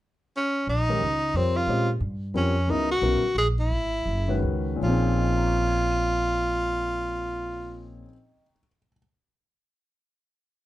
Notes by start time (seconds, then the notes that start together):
0.37 C#4
0.67 A#1 D#4
0.89 D#3 G#3 C#4 G4 A#4
1.00 C#2
1.33 F2 C3 G3 C4 F4 A#4 C#5
1.56 F4
1.67 A#2 G#3 C#4 G4 C5 D#5
2.00 G2
2.34 F2 G3 C4 C#4 F4 A#4 C#5
2.68 C#2 C#3 F#3 B3 D#4 E4 A#4
2.91 F#4
3.01 B1 C#3 F#3 B3 E4 A#4
3.35 A#1 G#4
3.60 E4
3.70 G#1
4.06 F#1
4.28 D#3 G#3 C#4 F#4 B4
4.43 C#2
4.76 A#2 F3
4.81 A#1 C#4 D#4 F4
4.86 C4 G#4
5.22 D#5
5.29 G5
5.37 A#5
5.46 C#6
5.56 F6
5.67 G#6
5.79 C7
5.91 D#7